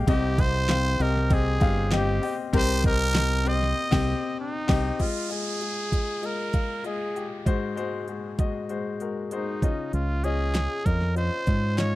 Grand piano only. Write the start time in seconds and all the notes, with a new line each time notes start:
0.07 C3 C4 G4 D#5
0.38 C4 G4 D#5
0.69 C4 G4 F5
0.99 C4 G4 D#5
1.30 C4 G4 D#5
1.60 C4 G4 F5
1.91 C4 G4 D#5
2.22 C4 G4 D#5
2.53 C3 C4 G4 A#4
2.84 C4 G4 D#5
3.14 C4 G4 D#5
3.45 C4 G4 C5
3.91 C4 G4
4.68 C4 G4 D#5
4.99 G#3 F4 D#5
5.29 G#3 F4 D#5
5.61 G#3 F4 G#4
5.91 G#3 F4 D#5
6.21 G#3 F4 D#5
6.53 G#3 F4 F5
6.84 G#3 F4 D#5
7.15 G#3 F4 G4
7.46 G#2 G#3 F#4 C5
7.76 G#3 F#4 C5
8.07 G#3 F#4 G#4
8.39 G#3 F#4 D#5
8.70 G#3 F#4 C5
9.01 G#3 F#4 A#4
9.32 G#3 F#4 C5
9.62 C#3 C#4 F4 D#5
10.24 C#4 F4 D#5
10.54 C#4 F4 G#4
10.85 C#4 F4 D#5
11.15 C#4 F4 D#5
11.46 C#4 F4 D#5
11.76 C#4 F4 D#5